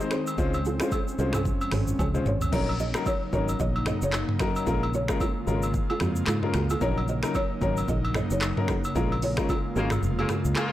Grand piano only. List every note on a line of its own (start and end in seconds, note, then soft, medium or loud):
0.00 0.13 G#3 medium
0.00 0.13 C4 medium
0.00 0.14 D#4 medium
0.00 0.14 C5 medium
0.38 0.55 G#3 medium
0.38 0.55 C#4 medium
0.38 0.55 F4 medium
0.38 0.55 C5 loud
0.80 0.94 G#3 medium
0.80 0.94 C#4 medium
0.80 0.94 F4 medium
0.80 0.94 C5 medium
1.19 1.36 G#3 medium
1.19 1.36 C#4 medium
1.19 1.36 F4 medium
1.19 1.36 C5 medium
2.14 2.28 G#3 medium
2.14 2.28 C#4 medium
2.14 2.28 F4 medium
2.14 2.28 C5 medium
2.52 2.69 F#3 medium
2.52 2.70 C#4 medium
2.52 2.70 D#4 medium
2.52 2.70 A#4 loud
2.95 3.08 F#3 medium
2.95 3.08 C#4 medium
2.95 3.08 D#4 medium
2.95 3.08 A#4 medium
3.33 3.50 F#3 medium
3.33 3.50 C#4 medium
3.33 3.50 D#4 medium
3.33 3.50 A#4 medium
4.40 4.65 F#3 medium
4.40 4.65 C#4 medium
4.40 4.65 D#4 medium
4.40 4.65 A#4 medium
4.66 4.84 G#3 medium
4.66 4.84 C#4 medium
4.66 4.84 F4 medium
4.66 4.84 A#4 loud
5.09 5.22 G#3 medium
5.09 5.23 C#4 medium
5.09 5.23 F4 medium
5.09 5.23 A#4 medium
5.47 5.64 G#3 medium
5.47 5.64 C#4 medium
5.47 5.64 F4 medium
5.47 5.65 A#4 medium
6.43 6.56 G#3 medium
6.43 6.56 C#4 medium
6.43 6.57 F4 medium
6.43 6.57 A#4 medium
6.81 6.98 F#3 medium
6.81 6.98 C#4 medium
6.81 6.98 D#4 medium
6.81 6.99 A#4 loud
7.24 7.37 F#3 medium
7.24 7.37 C#4 medium
7.24 7.37 D#4 medium
7.24 7.37 A#4 medium
7.61 7.79 F#3 medium
7.61 7.79 C#4 medium
7.61 7.79 D#4 medium
7.61 7.79 A#4 medium
8.57 8.71 F#3 medium
8.57 8.71 C#4 medium
8.57 8.71 D#4 medium
8.57 8.71 A#4 medium
8.95 9.12 G#3 medium
8.95 9.13 C#4 medium
8.95 9.13 F4 medium
8.95 9.13 A#4 loud
9.38 9.51 G#3 medium
9.38 9.51 C#4 medium
9.38 9.51 F4 medium
9.38 9.51 A#4 medium
9.76 9.93 G#3 medium
9.76 9.93 C#4 medium
9.76 9.93 F4 medium
9.76 9.93 A#4 medium